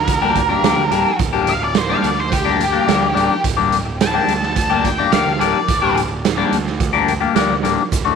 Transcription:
0.00 0.53 D2 medium
0.00 1.17 A#4 medium
0.07 kick loud
0.07 closed hi-hat medium
0.22 0.40 G3 medium
0.22 0.40 A#3 medium
0.22 0.40 D4 medium
0.22 0.40 G4 medium
0.35 kick medium
0.35 closed hi-hat medium
0.49 0.62 G3 medium
0.49 0.63 A#3 medium
0.49 0.63 D4 medium
0.49 0.63 G4 medium
0.63 0.75 D2 medium
0.63 0.82 G3 medium
0.63 0.82 A#3 medium
0.63 0.82 D4 medium
0.63 0.82 G4 medium
0.63 snare loud
0.63 closed hi-hat medium
0.77 0.90 D2 medium
0.90 1.04 D1 medium
0.90 1.09 G3 medium
0.90 1.10 A#3 medium
0.90 1.10 D4 medium
0.90 1.10 G4 medium
0.90 closed hi-hat medium
1.19 1.93 D1 medium
1.19 kick loud
1.19 closed hi-hat medium
1.33 1.52 G3 medium
1.33 1.52 A#3 medium
1.33 1.52 D4 medium
1.33 1.52 G4 loud
1.47 1.62 F5 loud
1.47 closed hi-hat medium
1.61 1.77 D5 medium
1.61 muted clean electric guitar stroke medium
1.75 1.91 C5 medium
1.75 snare loud
1.75 closed hi-hat medium
1.89 2.09 G3 medium
1.89 2.08 A#3 medium
1.89 2.08 D4 medium
1.89 2.08 G4 medium
1.89 2.04 F5 medium
2.03 2.77 D2 medium
2.03 2.19 D5 medium
2.03 closed hi-hat medium
2.20 2.33 C5 medium
2.32 3.41 G4 medium
2.32 kick loud
2.32 closed hi-hat medium
2.45 2.64 G3 medium
2.45 2.64 A#3 medium
2.45 2.64 D4 medium
2.45 2.64 G4 medium
2.60 closed hi-hat medium
2.72 2.86 G3 medium
2.72 2.86 A#3 medium
2.72 2.86 D4 medium
2.72 2.87 G4 medium
2.87 3.00 D2 medium
2.87 3.06 G3 medium
2.87 3.06 A#3 medium
2.87 3.06 D4 medium
2.87 3.06 G4 medium
2.87 snare loud
2.87 closed hi-hat medium
3.01 3.14 D2 medium
3.14 3.28 D1 medium
3.14 3.33 G3 medium
3.14 3.34 A#3 medium
3.14 3.34 D4 loud
3.14 3.34 G4 medium
3.14 closed hi-hat medium
3.44 4.18 D1 medium
3.44 kick loud
3.44 closed hi-hat medium
3.57 3.76 G3 medium
3.57 3.76 A#3 medium
3.57 3.76 D4 medium
3.57 3.76 G4 medium
3.72 closed hi-hat medium
3.85 muted clean electric guitar stroke soft
4.01 4.83 A5 loud
4.01 snare loud
4.01 closed hi-hat loud
4.14 4.33 G3 medium
4.14 4.33 A#3 medium
4.14 4.32 D4 medium
4.14 4.32 G4 medium
4.27 5.02 D2 medium
4.27 closed hi-hat medium
4.43 snare soft
4.56 kick loud
4.56 closed hi-hat loud
4.70 4.89 G3 medium
4.70 4.89 A#3 medium
4.70 4.89 D4 medium
4.70 4.88 G4 medium
4.84 5.12 G5 medium
4.84 kick medium
4.84 closed hi-hat medium
4.98 5.11 G3 medium
4.98 5.12 A#3 medium
4.98 5.12 D4 medium
4.98 5.12 G4 medium
5.12 5.24 D2 medium
5.12 5.30 G3 medium
5.12 5.31 A#3 medium
5.12 5.31 D4 medium
5.12 5.31 G4 medium
5.12 5.39 F5 medium
5.12 snare loud
5.12 closed hi-hat medium
5.26 5.39 D2 medium
5.40 5.52 D1 medium
5.40 5.58 G3 medium
5.40 5.59 A#3 medium
5.40 5.59 D4 medium
5.40 5.59 G4 medium
5.40 5.95 D5 loud
5.40 closed hi-hat medium
5.68 6.42 D1 medium
5.68 kick loud
5.68 closed hi-hat medium
5.82 6.01 G3 medium
5.82 6.01 A#3 medium
5.82 6.00 D4 medium
5.82 6.00 G4 medium
5.97 closed hi-hat medium
6.09 muted clean electric guitar stroke medium
6.25 snare loud
6.25 closed hi-hat medium
6.37 6.56 G3 medium
6.37 6.56 A#3 medium
6.37 6.56 D4 medium
6.37 6.56 G4 medium
6.52 7.26 D2 medium
6.52 closed hi-hat medium
6.67 snare soft
6.80 kick loud
6.80 closed hi-hat medium
6.93 7.12 G3 medium
6.93 7.12 A#3 medium
6.93 7.12 D4 medium
6.93 7.12 G4 medium
7.08 closed hi-hat medium
7.21 7.34 G3 medium
7.21 7.34 A#3 medium
7.21 7.34 D4 medium
7.21 7.35 G4 medium
7.35 7.48 D2 medium
7.35 7.54 G3 medium
7.35 7.54 A#3 medium
7.35 7.54 D4 medium
7.35 7.54 G4 medium
7.35 snare medium
7.35 closed hi-hat medium
7.49 7.62 D2 medium
7.63 7.76 D1 medium
7.63 7.82 G3 medium
7.63 7.82 A#3 medium
7.63 7.82 D4 medium
7.63 7.82 G4 medium
7.63 closed hi-hat medium
7.92 8.15 D1 medium
7.92 kick loud
7.92 closed hi-hat medium
7.92 shaker medium
8.05 8.15 A2 medium
8.05 8.15 D3 medium
8.05 8.15 A3 medium
8.05 8.15 F#4 medium

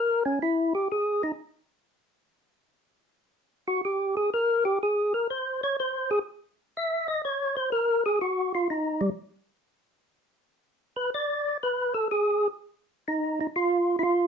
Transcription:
0.00 0.23 A#4 medium
0.25 0.39 C#4 medium
0.42 0.73 E4 medium
0.75 0.88 G4 medium
0.92 1.22 G#4 medium
1.23 1.32 D#4 medium
3.68 3.81 F#4 medium
3.85 4.15 G4 medium
4.17 4.30 G#4 medium
4.34 4.64 A#4 medium
4.65 4.79 G4 medium
4.83 5.13 G#4 medium
5.14 5.27 A#4 medium
5.30 5.61 C5 medium
5.63 5.76 C#5 loud
5.80 6.10 C5 medium
6.11 6.19 G#4 medium
6.77 7.07 E5 medium
7.08 7.22 D#5 medium
7.25 7.56 C#5 medium
7.57 7.70 C5 loud
7.72 8.04 A#4 medium
8.06 8.19 G#4 loud
8.21 8.52 F#4 medium
8.55 8.68 F4 medium
8.70 9.01 D#4 medium
9.01 9.10 G3 medium
10.96 11.10 B4 medium
11.14 11.58 D5 medium
11.63 11.93 B4 medium
11.94 12.08 A4 medium
12.11 12.48 G#4 medium
13.08 13.39 D#4 medium
13.41 13.47 D#4 medium
13.56 13.96 F4 medium
13.99 14.03 E4 medium
14.03 14.27 F4 medium

